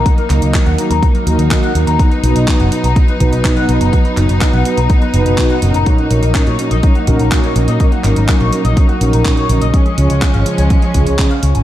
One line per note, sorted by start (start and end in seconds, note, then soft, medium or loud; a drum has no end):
0.00 5.83 F#3 medium
0.00 1.96 A#3 medium
0.00 9.70 D#4 medium
0.06 0.15 D#4 medium
0.06 kick loud
0.06 closed hi-hat medium
0.18 0.27 A#4 loud
0.18 closed hi-hat soft
0.30 0.39 C#2 medium
0.30 0.75 D#3 medium
0.30 0.75 A#3 medium
0.30 0.75 D#4 medium
0.30 0.39 D#4 medium
0.30 0.75 F#4 medium
0.30 0.75 A#4 medium
0.30 clap soft
0.30 closed hi-hat medium
0.42 0.51 C#2 medium
0.42 0.51 D#5 medium
0.42 closed hi-hat medium
0.54 0.66 D#4 medium
0.54 kick loud
0.54 clap loud
0.54 closed hi-hat soft
0.66 0.75 D#2 medium
0.66 0.75 F#5 medium
0.66 closed hi-hat soft
0.78 0.94 D#3 medium
0.78 0.94 A#3 medium
0.78 0.94 D#4 medium
0.78 0.88 D#4 medium
0.78 0.94 F#4 medium
0.78 0.94 A#4 medium
0.78 closed hi-hat loud
0.91 0.99 D#2 medium
0.91 1.02 A#5 medium
0.91 closed hi-hat medium
1.03 1.12 D#4 medium
1.03 kick loud
1.03 closed hi-hat medium
1.15 1.24 A#4 medium
1.15 closed hi-hat soft
1.27 1.36 D#2 medium
1.27 1.72 D#3 loud
1.27 1.72 A#3 medium
1.27 1.72 D#4 medium
1.27 1.36 D#4 medium
1.27 1.72 F#4 medium
1.27 1.72 A#4 loud
1.27 closed hi-hat medium
1.39 1.48 D#2 medium
1.39 1.48 D#5 medium
1.39 closed hi-hat soft
1.51 1.62 D#4 medium
1.51 kick loud
1.51 clap loud
1.51 closed hi-hat medium
1.63 1.72 F#5 medium
1.63 closed hi-hat soft
1.75 1.84 D#2 medium
1.75 1.98 A#3 medium
1.75 1.98 D#4 medium
1.75 1.84 D#4 medium
1.75 1.98 F#4 medium
1.75 1.98 A#4 medium
1.75 closed hi-hat medium
1.87 1.96 D#2 medium
1.87 1.99 A#5 medium
1.87 closed hi-hat medium
1.99 5.83 B3 medium
1.99 2.08 D#4 medium
1.99 kick loud
1.99 closed hi-hat medium
2.12 2.21 B4 loud
2.12 closed hi-hat soft
2.23 2.32 B1 medium
2.23 2.69 B2 medium
2.23 2.69 B3 medium
2.23 2.69 D#4 medium
2.23 2.33 D#4 medium
2.23 2.69 F#4 medium
2.23 2.69 B4 medium
2.23 closed hi-hat medium
2.36 2.44 B1 medium
2.36 2.45 D#5 medium
2.36 closed hi-hat medium
2.48 2.59 D#4 medium
2.48 kick loud
2.48 clap loud
2.48 closed hi-hat soft
2.60 2.69 F#1 medium
2.60 2.69 F#5 medium
2.60 closed hi-hat soft
2.72 2.87 B2 medium
2.72 2.87 B3 medium
2.72 2.87 D#4 medium
2.72 2.81 D#4 medium
2.72 2.88 F#4 medium
2.72 2.87 B4 medium
2.72 closed hi-hat medium
2.84 2.93 B1 medium
2.84 2.96 A#5 medium
2.84 closed hi-hat medium
2.96 3.05 D#4 medium
2.96 kick loud
2.96 closed hi-hat soft
3.08 3.17 B4 loud
3.08 closed hi-hat soft
3.20 3.29 B1 medium
3.20 3.66 B2 loud
3.20 3.66 B3 medium
3.20 3.66 D#4 loud
3.20 3.29 D#4 medium
3.20 3.66 F#4 medium
3.20 3.66 B4 loud
3.20 kick medium
3.20 closed hi-hat medium
3.32 3.41 B1 medium
3.32 3.41 D#5 medium
3.32 closed hi-hat medium
3.45 3.56 D#4 medium
3.45 kick loud
3.45 clap loud
3.45 closed hi-hat medium
3.57 3.66 F#5 medium
3.57 closed hi-hat soft
3.69 3.78 B1 medium
3.69 3.94 B2 medium
3.69 3.94 B3 medium
3.69 3.94 D#4 medium
3.69 3.78 D#4 medium
3.69 3.94 F#4 medium
3.69 3.94 B4 medium
3.69 closed hi-hat medium
3.81 3.90 F#1 medium
3.81 3.92 A#5 medium
3.81 closed hi-hat medium
3.93 4.02 D#4 medium
3.93 kick loud
3.93 closed hi-hat medium
4.05 4.14 B4 medium
4.05 closed hi-hat soft
4.17 4.26 F#1 medium
4.17 4.63 B2 medium
4.17 4.63 B3 medium
4.17 4.63 D#4 medium
4.17 4.26 D#4 medium
4.17 4.63 F#4 medium
4.17 4.63 B4 medium
4.17 clap soft
4.17 closed hi-hat medium
4.29 4.38 F#1 medium
4.29 4.38 D#5 medium
4.29 closed hi-hat soft
4.41 4.53 D#4 medium
4.41 kick loud
4.41 clap loud
4.41 closed hi-hat soft
4.53 4.62 B1 medium
4.53 4.62 F#5 medium
4.53 closed hi-hat soft
4.65 4.81 B2 medium
4.65 4.81 B3 medium
4.65 4.81 D#4 medium
4.65 4.75 D#4 medium
4.65 4.81 F#4 medium
4.65 4.81 B4 medium
4.65 closed hi-hat medium
4.77 4.86 B1 medium
4.77 4.89 A#5 medium
4.77 closed hi-hat soft
4.90 4.99 D#4 medium
4.90 kick loud
4.90 closed hi-hat soft
5.02 5.11 B4 medium
5.02 closed hi-hat soft
5.14 5.23 F#1 medium
5.14 5.24 B2 medium
5.14 5.24 B3 medium
5.14 5.24 D#4 medium
5.14 5.23 D#4 medium
5.14 5.24 F#4 medium
5.14 5.24 B4 loud
5.14 closed hi-hat medium
5.26 5.35 F#1 medium
5.26 5.59 B2 loud
5.26 5.59 B3 medium
5.26 5.59 D#4 medium
5.26 5.59 F#4 medium
5.26 5.59 B4 loud
5.26 5.35 D#5 medium
5.26 closed hi-hat soft
5.38 5.50 D#4 medium
5.38 kick loud
5.38 clap loud
5.38 closed hi-hat soft
5.50 5.59 F#5 medium
5.50 closed hi-hat soft
5.62 5.71 F#1 medium
5.62 6.08 A#2 medium
5.62 6.08 C#4 medium
5.62 6.08 D#4 medium
5.62 5.71 D#4 medium
5.62 6.08 F#4 medium
5.62 6.08 A#4 medium
5.62 closed hi-hat medium
5.74 5.83 F#1 medium
5.74 5.86 A#5 medium
5.74 closed hi-hat soft
5.86 9.70 F#3 medium
5.86 9.70 A#3 medium
5.86 5.96 C#4 medium
5.86 kick loud
5.86 closed hi-hat medium
5.98 6.08 F#4 medium
5.98 closed hi-hat soft
6.11 6.19 A#1 medium
6.11 6.56 A#2 medium
6.11 6.56 C#4 medium
6.11 6.20 C#4 medium
6.11 6.56 D#4 medium
6.11 6.56 F#4 medium
6.11 6.56 A#4 medium
6.11 closed hi-hat medium
6.23 6.32 A#1 medium
6.23 6.32 A#4 medium
6.23 closed hi-hat soft
6.35 6.46 C#4 medium
6.35 kick loud
6.35 clap loud
6.35 closed hi-hat soft
6.47 6.56 A#2 medium
6.47 6.56 C#5 medium
6.47 closed hi-hat soft
6.59 6.75 A#2 medium
6.59 6.75 C#4 medium
6.59 6.68 C#4 medium
6.59 6.75 D#4 medium
6.59 6.75 F#4 medium
6.59 6.75 A#4 medium
6.59 closed hi-hat medium
6.71 6.80 A#1 medium
6.71 6.83 D#5 medium
6.71 closed hi-hat soft
6.83 6.92 C#4 medium
6.83 kick loud
6.83 closed hi-hat soft
6.95 7.04 F#4 loud
6.95 closed hi-hat soft
7.07 7.16 A#1 medium
7.07 7.53 A#2 loud
7.07 7.16 C#4 medium
7.07 7.53 C#4 medium
7.07 7.53 D#4 medium
7.07 7.53 F#4 medium
7.07 7.53 A#4 loud
7.07 kick medium
7.07 closed hi-hat medium
7.19 7.28 A#1 medium
7.19 7.29 A#4 medium
7.19 closed hi-hat soft
7.32 7.43 C#4 medium
7.32 kick loud
7.32 clap loud
7.32 closed hi-hat soft
7.44 7.53 C#5 medium
7.44 closed hi-hat soft
7.56 7.65 A#1 medium
7.56 7.81 A#2 medium
7.56 7.65 C#4 medium
7.56 7.81 C#4 medium
7.56 7.81 D#4 medium
7.56 7.81 F#4 medium
7.56 7.81 A#4 medium
7.56 closed hi-hat medium
7.68 7.77 A#2 medium
7.68 7.79 D#5 medium
7.68 closed hi-hat soft
7.80 7.89 C#4 medium
7.80 kick loud
7.80 closed hi-hat medium
7.92 8.01 F#4 loud
7.92 closed hi-hat soft
8.04 8.13 G#1 medium
8.04 8.50 A#2 medium
8.04 8.50 C#4 medium
8.04 8.13 C#4 medium
8.04 8.50 D#4 medium
8.04 8.50 F#4 medium
8.04 8.50 A#4 medium
8.04 clap soft
8.04 closed hi-hat medium
8.16 8.25 G#1 medium
8.16 8.25 A#4 medium
8.16 closed hi-hat soft
8.28 8.40 C#4 medium
8.28 kick loud
8.28 clap loud
8.28 closed hi-hat soft
8.41 8.49 A#1 medium
8.41 8.50 C#5 medium
8.41 closed hi-hat soft
8.53 8.68 A#2 medium
8.53 8.68 C#4 medium
8.53 8.62 C#4 medium
8.53 8.68 D#4 medium
8.53 8.68 F#4 medium
8.53 8.68 A#4 medium
8.53 closed hi-hat medium
8.65 8.73 A#1 medium
8.65 8.76 D#5 medium
8.65 closed hi-hat soft
8.77 8.86 C#4 medium
8.77 kick loud
8.77 closed hi-hat soft
8.89 8.98 F#4 loud
8.89 closed hi-hat soft
9.01 9.10 A#1 medium
9.01 9.46 A#2 loud
9.01 9.10 C#4 medium
9.01 9.46 C#4 medium
9.01 9.47 D#4 medium
9.01 9.46 F#4 medium
9.01 9.46 A#4 loud
9.01 closed hi-hat medium
9.13 9.22 A#1 medium
9.13 9.22 A#4 medium
9.13 closed hi-hat soft
9.25 9.37 C#4 medium
9.25 kick loud
9.25 clap loud
9.25 closed hi-hat soft
9.37 9.46 C#5 medium
9.37 closed hi-hat soft
9.49 9.58 A#1 medium
9.49 9.72 C#3 medium
9.49 9.72 C#4 medium
9.49 9.58 C#4 medium
9.49 9.72 D#4 medium
9.49 9.72 F#4 medium
9.49 9.72 A#4 medium
9.49 closed hi-hat medium
9.61 9.70 A#1 medium
9.61 9.73 D#5 medium
9.61 closed hi-hat soft
9.74 11.63 F3 medium
9.74 11.63 G#3 medium
9.74 9.83 C#4 medium
9.74 11.63 C#4 medium
9.74 kick loud
9.74 closed hi-hat medium
9.86 9.95 G#4 medium
9.86 closed hi-hat soft
9.98 10.07 C#2 medium
9.98 10.43 C#3 medium
9.98 10.07 C#4 medium
9.98 10.43 C#4 medium
9.98 10.43 F4 medium
9.98 10.43 G#4 medium
9.98 10.43 C#5 medium
9.98 closed hi-hat medium
10.10 10.19 C#5 medium
10.10 closed hi-hat soft
10.22 10.34 C#4 medium
10.22 kick loud
10.22 clap loud
10.22 closed hi-hat soft
10.34 10.43 G#1 medium
10.34 10.43 F5 medium
10.34 closed hi-hat soft
10.46 10.62 C#3 medium
10.46 10.62 C#4 medium
10.46 10.55 C#4 medium
10.46 10.62 F4 medium
10.46 10.62 G#4 medium
10.46 10.62 C#5 medium
10.46 closed hi-hat medium
10.58 10.67 C#2 medium
10.58 10.70 G#5 medium
10.58 closed hi-hat medium
10.70 10.79 C#4 medium
10.70 kick loud
10.70 closed hi-hat soft
10.82 10.91 G#4 loud
10.82 closed hi-hat soft
10.94 11.03 C#2 medium
10.94 11.40 C#3 loud
10.94 11.40 C#4 medium
10.94 11.04 C#4 medium
10.94 11.40 F4 medium
10.94 11.40 G#4 medium
10.94 11.40 C#5 loud
10.94 kick medium
10.94 closed hi-hat medium
11.07 11.16 C#2 medium
11.07 11.16 C#5 medium
11.07 closed hi-hat soft
11.19 11.30 C#4 medium
11.19 kick loud
11.19 clap loud
11.19 closed hi-hat medium
11.31 11.40 F5 medium
11.31 closed hi-hat soft
11.43 11.52 C#2 medium
11.43 11.63 C#4 medium
11.43 11.52 C#4 medium
11.43 11.63 F4 medium
11.43 11.63 G#4 medium
11.43 11.63 C#5 medium
11.43 closed hi-hat medium
11.55 11.63 G#1 medium
11.55 11.63 G#5 medium
11.55 closed hi-hat soft